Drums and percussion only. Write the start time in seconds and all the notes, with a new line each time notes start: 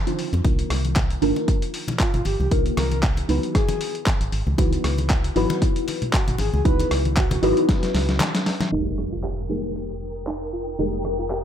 0.07 closed hi-hat
0.19 open hi-hat
0.33 closed hi-hat, muted conga, high conga
0.45 kick, closed hi-hat, muted conga
0.59 closed hi-hat
0.70 cross-stick, open hi-hat
0.85 closed hi-hat, high conga
0.96 kick, clap, closed hi-hat, muted conga
1.10 closed hi-hat
1.22 open hi-hat
1.36 closed hi-hat, muted conga
1.48 kick, closed hi-hat
1.62 closed hi-hat
1.74 open hi-hat
1.88 closed hi-hat, muted conga, low conga
1.99 kick, clap, closed hi-hat
2.14 closed hi-hat, low conga
2.25 open hi-hat, muted conga
2.40 high conga
2.51 kick, closed hi-hat
2.66 closed hi-hat
2.77 cross-stick, open hi-hat, muted conga
2.91 closed hi-hat, high conga
3.03 kick, clap, closed hi-hat
3.17 closed hi-hat, muted conga
3.29 open hi-hat
3.43 closed hi-hat
3.55 kick, cross-stick, closed hi-hat
3.69 closed hi-hat, muted conga
3.81 open hi-hat
3.95 closed hi-hat
4.06 kick, clap, closed hi-hat, muted conga
4.21 closed hi-hat
4.32 open hi-hat
4.47 high conga
4.58 kick, closed hi-hat, muted conga
4.73 closed hi-hat
4.84 cross-stick, open hi-hat
4.98 closed hi-hat, muted conga, high conga
5.10 kick, clap, closed hi-hat
5.24 closed hi-hat
5.36 open hi-hat
5.50 closed hi-hat, muted conga
5.62 kick, closed hi-hat
5.76 closed hi-hat
5.88 open hi-hat, muted conga
6.02 closed hi-hat, low conga
6.13 kick, clap, closed hi-hat
6.28 closed hi-hat, low conga
6.38 open hi-hat, muted conga
6.54 high conga
6.65 kick, closed hi-hat
6.79 closed hi-hat, muted conga
6.91 cross-stick, open hi-hat
7.05 closed hi-hat, high conga
7.17 kick, clap, closed hi-hat
7.31 closed hi-hat, muted conga, low conga
7.43 open hi-hat
7.57 closed hi-hat
7.69 kick, snare, closed hi-hat, muted conga
7.83 snare, closed hi-hat
7.95 snare, open hi-hat
8.09 snare, closed hi-hat
8.20 snare, clap, closed hi-hat, muted conga
8.35 snare, closed hi-hat
8.46 snare, open hi-hat
8.60 snare, closed hi-hat, muted conga, high conga
8.72 closed hi-hat
8.86 closed hi-hat
8.98 cross-stick
9.12 closed hi-hat
9.24 clap, closed hi-hat
9.38 closed hi-hat
9.64 closed hi-hat
9.76 closed hi-hat
9.90 closed hi-hat
10.16 closed hi-hat
10.27 clap, closed hi-hat
10.41 closed hi-hat
10.79 closed hi-hat
10.93 closed hi-hat
11.05 cross-stick
11.19 closed hi-hat
11.30 clap, closed hi-hat